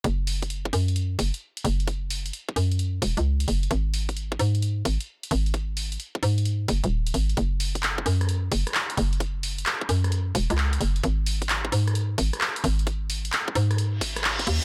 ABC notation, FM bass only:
X:1
M:4/4
L:1/16
Q:"Swing 16ths" 1/4=131
K:G#phr
V:1 name="FM bass" clef=bass
F,,,6 F,,4 F,,, z3 F,,,2- | F,,,4 z2 F,,4 E,,, C,,3 F,,,2 | G,,,6 G,,4 G,,, z3 G,,,2- | G,,,4 z2 G,,4 F,,, D,,,3 G,,,2 |
F,,,6 F,,4 F,,, z3 F,,,2- | F,,,4 z2 F,,4 E,,, C,,3 F,,,2 | G,,,6 G,,4 G,,, z3 G,,,2- | G,,,4 z2 G,,4 G,,,4 D,, z |]